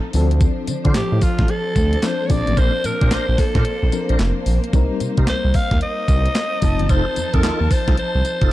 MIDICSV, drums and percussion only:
0, 0, Header, 1, 2, 480
1, 0, Start_track
1, 0, Tempo, 540541
1, 362, Time_signature, 4, 2, 24, 8
1, 7571, End_track
2, 0, Start_track
2, 0, Title_t, "Drums"
2, 118, Note_on_c, 9, 46, 78
2, 120, Note_on_c, 9, 54, 69
2, 207, Note_off_c, 9, 46, 0
2, 209, Note_off_c, 9, 54, 0
2, 276, Note_on_c, 9, 42, 58
2, 360, Note_on_c, 9, 54, 63
2, 361, Note_off_c, 9, 42, 0
2, 361, Note_on_c, 9, 42, 67
2, 362, Note_on_c, 9, 36, 117
2, 449, Note_off_c, 9, 54, 0
2, 450, Note_off_c, 9, 42, 0
2, 451, Note_off_c, 9, 36, 0
2, 599, Note_on_c, 9, 42, 87
2, 601, Note_on_c, 9, 54, 81
2, 688, Note_off_c, 9, 42, 0
2, 690, Note_off_c, 9, 54, 0
2, 753, Note_on_c, 9, 42, 59
2, 756, Note_on_c, 9, 36, 102
2, 837, Note_on_c, 9, 54, 89
2, 838, Note_off_c, 9, 42, 0
2, 838, Note_on_c, 9, 42, 91
2, 839, Note_on_c, 9, 38, 122
2, 845, Note_off_c, 9, 36, 0
2, 845, Note_on_c, 9, 39, 92
2, 926, Note_off_c, 9, 54, 0
2, 927, Note_off_c, 9, 42, 0
2, 928, Note_off_c, 9, 38, 0
2, 934, Note_off_c, 9, 39, 0
2, 1079, Note_on_c, 9, 46, 83
2, 1082, Note_on_c, 9, 36, 91
2, 1083, Note_on_c, 9, 54, 69
2, 1168, Note_off_c, 9, 46, 0
2, 1171, Note_off_c, 9, 36, 0
2, 1171, Note_off_c, 9, 54, 0
2, 1230, Note_on_c, 9, 42, 58
2, 1231, Note_on_c, 9, 38, 61
2, 1233, Note_on_c, 9, 36, 95
2, 1316, Note_off_c, 9, 42, 0
2, 1316, Note_on_c, 9, 42, 82
2, 1320, Note_off_c, 9, 38, 0
2, 1322, Note_off_c, 9, 36, 0
2, 1405, Note_off_c, 9, 42, 0
2, 1561, Note_on_c, 9, 36, 94
2, 1561, Note_on_c, 9, 54, 62
2, 1562, Note_on_c, 9, 42, 66
2, 1649, Note_off_c, 9, 36, 0
2, 1649, Note_off_c, 9, 54, 0
2, 1650, Note_off_c, 9, 42, 0
2, 1712, Note_on_c, 9, 42, 60
2, 1797, Note_off_c, 9, 42, 0
2, 1797, Note_on_c, 9, 42, 77
2, 1800, Note_on_c, 9, 54, 89
2, 1801, Note_on_c, 9, 38, 109
2, 1806, Note_on_c, 9, 39, 84
2, 1886, Note_off_c, 9, 42, 0
2, 1889, Note_off_c, 9, 38, 0
2, 1889, Note_off_c, 9, 54, 0
2, 1895, Note_off_c, 9, 39, 0
2, 2039, Note_on_c, 9, 46, 74
2, 2041, Note_on_c, 9, 54, 69
2, 2042, Note_on_c, 9, 36, 106
2, 2128, Note_off_c, 9, 46, 0
2, 2130, Note_off_c, 9, 36, 0
2, 2130, Note_off_c, 9, 54, 0
2, 2196, Note_on_c, 9, 42, 59
2, 2283, Note_on_c, 9, 54, 69
2, 2284, Note_off_c, 9, 42, 0
2, 2284, Note_on_c, 9, 36, 125
2, 2284, Note_on_c, 9, 42, 73
2, 2372, Note_off_c, 9, 36, 0
2, 2372, Note_off_c, 9, 54, 0
2, 2373, Note_off_c, 9, 42, 0
2, 2524, Note_on_c, 9, 42, 84
2, 2525, Note_on_c, 9, 54, 76
2, 2612, Note_off_c, 9, 42, 0
2, 2614, Note_off_c, 9, 54, 0
2, 2675, Note_on_c, 9, 42, 54
2, 2677, Note_on_c, 9, 36, 106
2, 2760, Note_on_c, 9, 54, 96
2, 2761, Note_off_c, 9, 42, 0
2, 2761, Note_on_c, 9, 42, 88
2, 2762, Note_on_c, 9, 38, 110
2, 2766, Note_off_c, 9, 36, 0
2, 2768, Note_on_c, 9, 39, 86
2, 2849, Note_off_c, 9, 54, 0
2, 2850, Note_off_c, 9, 42, 0
2, 2851, Note_off_c, 9, 38, 0
2, 2857, Note_off_c, 9, 39, 0
2, 3002, Note_on_c, 9, 38, 66
2, 3002, Note_on_c, 9, 46, 83
2, 3004, Note_on_c, 9, 36, 90
2, 3006, Note_on_c, 9, 54, 73
2, 3091, Note_off_c, 9, 38, 0
2, 3091, Note_off_c, 9, 46, 0
2, 3093, Note_off_c, 9, 36, 0
2, 3095, Note_off_c, 9, 54, 0
2, 3152, Note_on_c, 9, 42, 56
2, 3153, Note_on_c, 9, 36, 94
2, 3153, Note_on_c, 9, 38, 64
2, 3240, Note_off_c, 9, 42, 0
2, 3240, Note_on_c, 9, 42, 85
2, 3242, Note_off_c, 9, 36, 0
2, 3242, Note_off_c, 9, 38, 0
2, 3329, Note_off_c, 9, 42, 0
2, 3483, Note_on_c, 9, 54, 66
2, 3484, Note_on_c, 9, 42, 68
2, 3572, Note_off_c, 9, 54, 0
2, 3573, Note_off_c, 9, 42, 0
2, 3634, Note_on_c, 9, 42, 55
2, 3720, Note_off_c, 9, 42, 0
2, 3720, Note_on_c, 9, 42, 71
2, 3724, Note_on_c, 9, 38, 104
2, 3724, Note_on_c, 9, 54, 93
2, 3730, Note_on_c, 9, 39, 84
2, 3809, Note_off_c, 9, 42, 0
2, 3813, Note_off_c, 9, 38, 0
2, 3813, Note_off_c, 9, 54, 0
2, 3819, Note_off_c, 9, 39, 0
2, 3962, Note_on_c, 9, 46, 72
2, 3963, Note_on_c, 9, 54, 65
2, 4050, Note_off_c, 9, 46, 0
2, 4052, Note_off_c, 9, 54, 0
2, 4118, Note_on_c, 9, 42, 58
2, 4203, Note_off_c, 9, 42, 0
2, 4203, Note_on_c, 9, 42, 69
2, 4203, Note_on_c, 9, 54, 62
2, 4204, Note_on_c, 9, 36, 119
2, 4292, Note_off_c, 9, 36, 0
2, 4292, Note_off_c, 9, 42, 0
2, 4292, Note_off_c, 9, 54, 0
2, 4443, Note_on_c, 9, 42, 82
2, 4445, Note_on_c, 9, 54, 78
2, 4532, Note_off_c, 9, 42, 0
2, 4534, Note_off_c, 9, 54, 0
2, 4594, Note_on_c, 9, 42, 56
2, 4597, Note_on_c, 9, 36, 98
2, 4678, Note_on_c, 9, 54, 89
2, 4680, Note_off_c, 9, 42, 0
2, 4680, Note_on_c, 9, 38, 115
2, 4680, Note_on_c, 9, 42, 81
2, 4686, Note_off_c, 9, 36, 0
2, 4686, Note_on_c, 9, 39, 92
2, 4767, Note_off_c, 9, 54, 0
2, 4768, Note_off_c, 9, 42, 0
2, 4769, Note_off_c, 9, 38, 0
2, 4775, Note_off_c, 9, 39, 0
2, 4920, Note_on_c, 9, 46, 80
2, 4923, Note_on_c, 9, 36, 89
2, 4924, Note_on_c, 9, 54, 70
2, 5008, Note_off_c, 9, 46, 0
2, 5012, Note_off_c, 9, 36, 0
2, 5012, Note_off_c, 9, 54, 0
2, 5073, Note_on_c, 9, 36, 97
2, 5073, Note_on_c, 9, 42, 59
2, 5074, Note_on_c, 9, 38, 60
2, 5159, Note_off_c, 9, 42, 0
2, 5159, Note_on_c, 9, 42, 82
2, 5162, Note_off_c, 9, 36, 0
2, 5163, Note_off_c, 9, 38, 0
2, 5247, Note_off_c, 9, 42, 0
2, 5401, Note_on_c, 9, 36, 91
2, 5402, Note_on_c, 9, 54, 63
2, 5403, Note_on_c, 9, 42, 72
2, 5490, Note_off_c, 9, 36, 0
2, 5491, Note_off_c, 9, 54, 0
2, 5492, Note_off_c, 9, 42, 0
2, 5555, Note_on_c, 9, 42, 58
2, 5637, Note_off_c, 9, 42, 0
2, 5637, Note_on_c, 9, 42, 73
2, 5640, Note_on_c, 9, 38, 108
2, 5640, Note_on_c, 9, 54, 88
2, 5646, Note_on_c, 9, 39, 88
2, 5725, Note_off_c, 9, 42, 0
2, 5729, Note_off_c, 9, 38, 0
2, 5729, Note_off_c, 9, 54, 0
2, 5735, Note_off_c, 9, 39, 0
2, 5877, Note_on_c, 9, 46, 78
2, 5878, Note_on_c, 9, 54, 70
2, 5881, Note_on_c, 9, 36, 108
2, 5966, Note_off_c, 9, 46, 0
2, 5967, Note_off_c, 9, 54, 0
2, 5970, Note_off_c, 9, 36, 0
2, 6033, Note_on_c, 9, 42, 58
2, 6121, Note_off_c, 9, 42, 0
2, 6121, Note_on_c, 9, 42, 70
2, 6121, Note_on_c, 9, 54, 65
2, 6122, Note_on_c, 9, 36, 120
2, 6209, Note_off_c, 9, 54, 0
2, 6210, Note_off_c, 9, 42, 0
2, 6211, Note_off_c, 9, 36, 0
2, 6360, Note_on_c, 9, 42, 85
2, 6362, Note_on_c, 9, 54, 80
2, 6449, Note_off_c, 9, 42, 0
2, 6451, Note_off_c, 9, 54, 0
2, 6513, Note_on_c, 9, 42, 57
2, 6517, Note_on_c, 9, 36, 100
2, 6600, Note_on_c, 9, 54, 96
2, 6601, Note_off_c, 9, 42, 0
2, 6601, Note_on_c, 9, 42, 92
2, 6602, Note_on_c, 9, 38, 124
2, 6605, Note_off_c, 9, 36, 0
2, 6608, Note_on_c, 9, 39, 95
2, 6688, Note_off_c, 9, 54, 0
2, 6690, Note_off_c, 9, 38, 0
2, 6690, Note_off_c, 9, 42, 0
2, 6696, Note_off_c, 9, 39, 0
2, 6843, Note_on_c, 9, 46, 80
2, 6845, Note_on_c, 9, 36, 85
2, 6847, Note_on_c, 9, 54, 67
2, 6932, Note_off_c, 9, 46, 0
2, 6933, Note_off_c, 9, 36, 0
2, 6936, Note_off_c, 9, 54, 0
2, 6995, Note_on_c, 9, 36, 102
2, 6995, Note_on_c, 9, 42, 56
2, 6996, Note_on_c, 9, 38, 61
2, 7081, Note_off_c, 9, 42, 0
2, 7081, Note_on_c, 9, 42, 81
2, 7084, Note_off_c, 9, 36, 0
2, 7085, Note_off_c, 9, 38, 0
2, 7170, Note_off_c, 9, 42, 0
2, 7324, Note_on_c, 9, 54, 64
2, 7325, Note_on_c, 9, 42, 70
2, 7413, Note_off_c, 9, 54, 0
2, 7414, Note_off_c, 9, 42, 0
2, 7472, Note_on_c, 9, 42, 60
2, 7474, Note_on_c, 9, 36, 99
2, 7561, Note_off_c, 9, 42, 0
2, 7563, Note_off_c, 9, 36, 0
2, 7571, End_track
0, 0, End_of_file